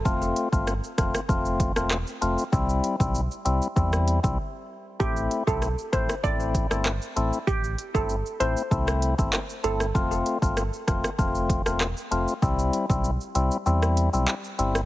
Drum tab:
HH |--x---x---x---x-|--x---x---x-----|--x---x---x---x-|--x---x---x---x-|
SH |xxxxxxxxxxxxxxxx|xxxxxxxxxxxx----|xxxxxxxxxxxxxxxx|xxxxxxxxxxxxxxxx|
CP |------------x---|----------------|------------x---|------------x---|
SD |----r-rr---rr---|---------r------|----r-rr---rr---|---------r--r--r|
BD |o--o--o-o-o-----|o--o----o--o----|o--o--o-o-o-----|o--o----o--o----|

HH |--x---x---x---x-|--x---x---x---x-|
SH |xxxxxxxxxxxxxxxx|xxxxxxxxxxxxxxxx|
CP |------------x---|------------x---|
SD |----r-rr---rr---|---------r-----r|
BD |o--o--o-o-o-----|o--o------------|